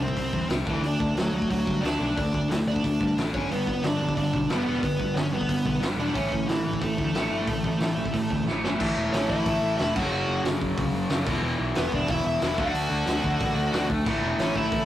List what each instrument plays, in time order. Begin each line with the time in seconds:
Already playing: overdriven electric guitar C3
0.00 picked electric bass C2, overdriven electric guitar G3, lead electric guitar C4 C5
0.08 kick
0.16 picked electric bass C2, overdriven electric guitar C3 G3, kick, open hi-hat
0.33 picked electric bass E2, overdriven electric guitar C3 G3, kick
0.47 picked electric bass C2, overdriven electric guitar C3 G3 C4, snare, open hi-hat
0.66 picked electric bass D2, overdriven electric guitar D3 A3 D4, lead electric guitar E3, kick
0.71 lead electric guitar E4
0.81 picked electric bass D2, overdriven electric guitar D3 A3, open hi-hat
0.86 lead electric guitar D4 D5
0.99 picked electric bass D2, overdriven electric guitar D3 A3, kick
1.15 picked electric bass D2, overdriven electric guitar D3 A3, lead electric guitar F#3, snare, open hi-hat
1.20 lead electric guitar F#4
1.32 picked electric bass D2, overdriven electric guitar D3 A3, lead electric guitar F#3
1.36 lead electric guitar F#4
1.42 kick
1.50 picked electric bass D2, overdriven electric guitar D3 A3, lead electric guitar F#3 F#4, kick, open hi-hat
1.66 picked electric bass G2, overdriven electric guitar D3 A3, kick
1.81 picked electric bass D2, overdriven electric guitar D3 A3 D4, lead electric guitar D4 D5, open hi-hat
1.86 snare
1.99 picked electric bass B1, overdriven electric guitar D3 A3 D4
2.17 picked electric bass D2, overdriven electric guitar D3 A3, lead electric guitar D4 D5, kick, open hi-hat
2.33 picked electric bass D2, overdriven electric guitar D3 A3, kick
2.48 picked electric bass D2, overdriven electric guitar D3 A3, lead electric guitar E3, snare, open hi-hat
2.53 lead electric guitar E4
2.67 picked electric bass D2, overdriven electric guitar D3 A3, lead electric guitar D5
2.71 lead electric guitar D4
2.76 kick
2.84 picked electric bass D2, overdriven electric guitar D3 A3, kick, open hi-hat
3.00 picked electric bass G2, overdriven electric guitar D3 A3, kick
3.17 picked electric bass A1, overdriven electric guitar D3 A3 D4, snare, open hi-hat
3.33 picked electric bass G1, overdriven electric guitar G2 D3 G3, lead electric guitar C#4 C#5, kick
3.51 picked electric bass G1, overdriven electric guitar G2 D3, distorted electric guitar G3, lead electric guitar B3 B4, open hi-hat
3.67 picked electric bass G1, overdriven electric guitar G2 D3, kick
3.84 picked electric bass G1, overdriven electric guitar G2 D3, lead electric guitar D4 D5, snare, open hi-hat
3.99 picked electric bass G1, overdriven electric guitar G2 D3
4.09 kick
4.15 picked electric bass G1, overdriven electric guitar G2 D3, lead electric guitar D4 D5, kick, open hi-hat
4.33 picked electric bass B1, overdriven electric guitar G2 D3, kick
4.49 picked electric bass G1, overdriven electric guitar G2 D3 G3, lead electric guitar B3 B4, snare, open hi-hat
4.65 picked electric bass E1, overdriven electric guitar G2 D3 G3
4.83 picked electric bass G1, overdriven electric guitar G2 D3, lead electric guitar B3 B4, kick, open hi-hat
4.99 picked electric bass G1, overdriven electric guitar G2 D3, kick
5.15 picked electric bass G1, overdriven electric guitar G2 D3, lead electric guitar C#4 C#5, snare, open hi-hat
5.32 picked electric bass G1, overdriven electric guitar G2 D3, lead electric guitar B3 B4
5.41 kick
5.49 picked electric bass G1, overdriven electric guitar G2 D3, kick, open hi-hat
5.65 picked electric bass B1, overdriven electric guitar G2 D3, kick
5.81 picked electric bass G1, overdriven electric guitar G2 D3 G3, snare, open hi-hat
5.97 picked electric bass E1, overdriven electric guitar G2 D3 G3, lead electric guitar D4 D5
6.12 picked electric bass A1, overdriven electric guitar A2 E3 A3, lead electric guitar C#4 C#5, kick, open hi-hat
6.30 picked electric bass A1, overdriven electric guitar A2 E3, kick
6.46 picked electric bass A1, overdriven electric guitar A2 E3, lead electric guitar E3 E4, snare, open hi-hat
6.63 picked electric bass A1, overdriven electric guitar A2 E3
6.73 kick
6.81 picked electric bass A1, overdriven electric guitar A2 E3, lead electric guitar A3 A4, kick, open hi-hat
6.97 picked electric bass D2, overdriven electric guitar A2 E3, kick
7.14 picked electric bass A1, overdriven electric guitar A2 E3 A3, snare, open hi-hat
7.31 picked electric bass G1, overdriven electric guitar A2 E3 A3
7.47 picked electric bass A1, overdriven electric guitar A2 E3, kick, open hi-hat
7.64 picked electric bass A1, overdriven electric guitar A2 E3, kick
7.79 picked electric bass A1, overdriven electric guitar A2 E3, snare, open hi-hat
7.96 picked electric bass A1, overdriven electric guitar A2 E3
8.06 kick
8.13 picked electric bass A1, overdriven electric guitar A2 E3, kick, open hi-hat
8.30 picked electric bass D2, overdriven electric guitar A2 E3, kick
8.47 picked electric bass A1, overdriven electric guitar A2 E3 A3, snare
8.64 picked electric bass G1, overdriven electric guitar A2 E3 A3, lead electric guitar C#4 C#5, snare
8.80 picked electric bass A1, overdriven electric guitar A2 E3 A3, kick, crash
8.97 picked electric bass E1
9.13 picked electric bass A1, lead electric guitar C#4 C#5, snare, open hi-hat
9.29 picked electric bass A1, lead electric guitar E4 E5, kick
9.45 picked electric bass A1, kick, open hi-hat
9.63 picked electric bass A1
9.78 picked electric bass E1, lead electric guitar E4 E5, snare, open hi-hat
9.95 picked electric bass F#1, overdriven electric guitar F#2 C#3 F#3, lead electric guitar F#4 F#5, kick, crash
10.12 picked electric bass F#1
10.28 picked electric bass F#1
10.45 picked electric bass F#1, snare, open hi-hat
10.61 picked electric bass F#1, kick
10.78 picked electric bass C#2, kick, open hi-hat
10.94 picked electric bass F#1
11.10 picked electric bass F#1, overdriven electric guitar F#2 C#3 F#3, snare, open hi-hat
11.26 picked electric bass E1, overdriven electric guitar E2 B2, kick, crash
11.30 overdriven electric guitar E3
11.43 picked electric bass E1
11.60 picked electric bass B1
11.75 picked electric bass E1, lead electric guitar B3 B4, snare, open hi-hat
11.92 picked electric bass E1, lead electric guitar D4 D5, kick
12.08 picked electric bass E1, lead electric guitar E4 E5, kick, open hi-hat
12.25 picked electric bass E1, lead electric guitar E4 E5
12.41 picked electric bass E1, overdriven electric guitar E2 B2 E3, snare, open hi-hat
12.56 picked electric bass D2, overdriven electric guitar D3 A3, lead electric guitar F#4 F#5, kick
12.60 overdriven electric guitar D4
12.74 picked electric bass D2, open hi-hat
12.91 picked electric bass D2
13.07 picked electric bass D2, snare, open hi-hat
13.24 picked electric bass D2, kick
13.40 picked electric bass A1, kick, open hi-hat
13.57 picked electric bass D2
13.72 picked electric bass D2, overdriven electric guitar D3 A3 D4, snare, open hi-hat
13.90 picked electric bass D2, kick
14.04 picked electric bass A1, overdriven electric guitar A2 E3 A3, kick, crash
14.22 picked electric bass E1
14.38 picked electric bass A1, lead electric guitar C#4 C#5, snare, open hi-hat
14.56 picked electric bass A1, lead electric guitar E4 E5, kick
14.72 picked electric bass A1, kick, open hi-hat